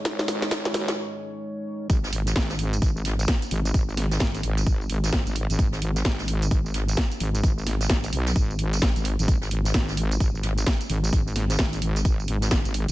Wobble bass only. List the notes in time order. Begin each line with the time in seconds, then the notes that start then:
0.05 G#1
0.28 G#1
0.74 F#1
1.90 G#1
2.36 G#1
2.82 G#1
3.51 G#1
3.74 G#1
4.20 G#1
4.43 G#1
4.90 G#1
5.27 G#1
5.50 G#1
5.59 G#1
6.05 G#1
6.51 G#1
7.20 G#1
7.43 G#1
7.90 G#1
8.13 B1
8.36 G#1
8.82 A1
8.96 G#1
9.19 G#1
9.28 G#1
9.74 G#1
10.20 G#1
10.90 G#1
11.13 G#1
11.59 G#1
11.82 G#1
12.28 G#1
12.65 G#1
12.88 G#1